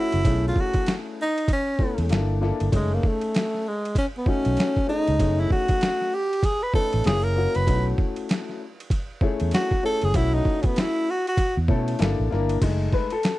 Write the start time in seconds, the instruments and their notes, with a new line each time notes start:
Already playing: upright piano A3 C#4 E4 F#4
0.00 tenor saxophone E4
0.12 fretless electric bass F#1, ride
0.24 fretless electric bass B1, upright piano A3 C#4 D#4 G#4, kick, ride
0.32 upright piano E4
0.48 tenor saxophone F4
0.56 kick
0.60 tenor saxophone F#4
0.73 kick, ride
0.86 snare, hi-hat pedal, ride
1.22 tenor saxophone D#4
1.38 ride
1.48 kick, ride
1.53 tenor saxophone C#4
1.79 upright piano A3 C#4 E4 A4, kick
1.98 fretless electric bass E2, ride
2.09 fretless electric bass G1, upright piano A#3 D4 E4 A4, snare, hi-hat pedal, ride
2.41 upright piano A#3 D4 E4 A4, snare
2.60 fretless electric bass G1, ride
2.72 fretless electric bass F#1, tenor saxophone G#3, upright piano A3 C#4 D#4 G#4, kick, ride
2.94 tenor saxophone A#3
3.03 tenor saxophone A3, kick
3.21 ride
3.34 snare, hi-hat pedal, ride
3.54 snare
3.68 tenor saxophone G#3
3.85 ride
3.95 tenor saxophone C#4, kick, ride
4.17 tenor saxophone B3
4.26 upright piano A3 C#4 D#4 F#4, tenor saxophone C#4, kick
4.45 fretless electric bass B1, ride
4.57 snare, hi-hat pedal, ride
4.77 kick
4.87 upright piano A3 C#4 D#4 G#4, tenor saxophone D#4
5.08 fretless electric bass C#2, ride
5.19 fretless electric bass F#1, upright piano A3 C#4 D#4 G#4, kick, ride
5.40 tenor saxophone E4
5.50 tenor saxophone F#4, kick
5.68 kick, ride
5.81 snare, hi-hat pedal, ride
6.01 snare
6.14 tenor saxophone G4
6.33 ride
6.43 tenor saxophone G#4, kick, ride
6.63 tenor saxophone B4
6.74 upright piano A3 C#4 D#4 B4, tenor saxophone A4, kick
6.93 fretless electric bass A1, ride
7.04 fretless electric bass F#1, upright piano A#3 C#4 E4 G#4, tenor saxophone G#4, snare, hi-hat pedal, ride
7.24 tenor saxophone A#4
7.36 upright piano A#3 C#4 E4 F#4
7.55 fretless electric bass F#1, tenor saxophone B4, ride
7.67 fretless electric bass B1, upright piano A3 C#4 D#4 F#4, kick, ride
7.75 upright piano E4
7.98 kick
8.16 ride
8.29 snare, hi-hat pedal, ride
8.49 snare
8.80 ride
8.90 kick, ride
9.21 upright piano A3 C#4 E4 G#4, kick
9.40 fretless electric bass E2, ride
9.51 tenor saxophone F#4, snare, hi-hat pedal, ride
9.71 kick
9.83 upright piano A3 C#4 E4 G#4, tenor saxophone A4
10.02 fretless electric bass F#1, tenor saxophone G#4, ride
10.14 fretless electric bass B1, upright piano A3 C#4 E4 F#4, tenor saxophone E4, kick, ride
10.34 tenor saxophone D#4
10.45 kick
10.62 tenor saxophone C#4, kick, ride
10.66 tenor saxophone B3
10.76 snare, hi-hat pedal, ride
10.80 tenor saxophone E4
11.10 tenor saxophone F#4
11.27 tenor saxophone F#4, ride
11.37 kick, ride
11.57 fretless electric bass E2
11.68 fretless electric bass B2, upright piano A3 C#4 E4 A4, kick
11.88 ride
11.99 fretless electric bass G1, upright piano A#3 D4 E4 A4, snare, hi-hat pedal, ride
12.19 fretless electric bass A1
12.30 fretless electric bass G1, upright piano A#3 D4 E4 A#4, snare
12.49 ride
12.62 fretless electric bass F#1, upright piano G#3 A3 D#4, kick, crash, ride
12.93 upright piano B4, kick
13.10 upright piano A4, ride
13.23 snare, hi-hat pedal, ride